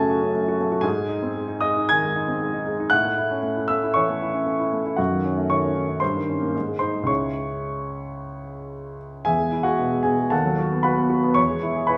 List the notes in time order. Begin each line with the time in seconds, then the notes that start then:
Already playing: F#2 C#3 A3 C#4 F#4 G#4 A4 G#5 A5
0.10 F#4
0.22 C#4
0.35 A3
0.48 F#4
0.61 A3
0.72 F#4
0.81 G#2 G#4 G#5
0.96 G#3
1.09 D#4
1.23 C4
1.36 G#3
1.48 D#4
1.60 G#3 D#5 D#6
1.77 D#4
1.89 D#3 G#5 G#6
2.04 G#3
2.16 D#4
2.28 C4
2.42 G#3
2.54 D#4
2.67 G#3
2.80 D#4
2.90 A2 F#5 F#6
3.05 A3
3.18 E4
3.31 C#4
3.43 A3
3.56 E4
3.68 A3 E5 E6
3.83 E4
3.94 E3 C#5 C#6
4.09 A3
4.22 E4
4.34 C#4
4.46 A3
4.60 E4
4.73 A3
4.86 E4
4.96 F#2 F#4 F#5
5.12 D#3
5.25 C#4
5.38 A3
5.50 D#3 C#5 C#6
5.65 C#4
5.76 D#3
5.89 C#4
6.00 G2 C5 C6
6.16 D#3
6.29 C#4
6.41 A#3
6.55 G#2
6.67 G#3
6.79 D#4 C5 C6
6.95 G#3
7.03 C#2 C#3 G#3 E4 C#6
7.08 C#5
9.25 E2 G#4 E5 G#5
9.39 G#3
9.52 E4
9.63 G#3 F#4 F#5
9.79 B2
9.92 G#3
10.03 B2 G#4 G#5
10.19 G#3
10.30 D#2 A4 F#5 A5
10.45 F#3
10.58 F#4
10.71 B3
10.83 F#4 B4 F#5 B5
10.97 B3
11.10 F#4
11.24 B3
11.34 E2 C#5 C#6
11.49 G#3
11.63 E4
11.76 G#4
11.87 E4 B4 G#5 B5